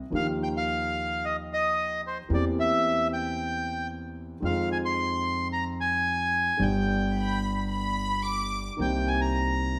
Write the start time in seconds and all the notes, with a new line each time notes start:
0.10 D#2 D#3 F3 A#3 D#4 G4
0.16 F5
0.43 G5
0.57 F5
1.25 D#5
1.53 D#5
2.07 C5
2.29 E2 E3 A#3 C4 G4
2.34 D5
2.60 E5
3.13 G5
4.40 F2 D#3 F3 G#3 C4
4.44 F4 F5
4.72 G#5
4.85 C6
5.53 A#5
5.81 G#5
6.57 G1 G2 D3 G3 B3
6.62 G4 G5
7.15 B5
7.69 B5
8.23 D6
8.77 C2 C3 D#3 A#3 C4
8.81 G4 G5
9.08 G#5
9.21 A#5